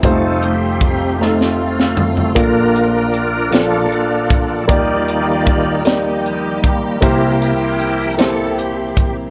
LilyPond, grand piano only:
<<
  \new Staff \with { instrumentName = "Grand piano" } { \time 6/8 \key bes \major \tempo 4. = 51 <g a ees' f' c''>4 r8 <a ees' f' a'>4 r8 | <bes f' a' d''>4 r8 <bes f' a' d''>4 r8 | <bes ees' g' d''>4 r8 <bes ees' g' d''>4 r8 | <bes e' g' c''>4 r8 <bes e' g' c''>4 r8 | }
  \new Staff \with { instrumentName = "Grand piano" } { \clef bass \time 6/8 \key bes \major <f,, f,>2. | <bes,, bes,>2. | <ees, ees>2. | <c, c>2. | }
>>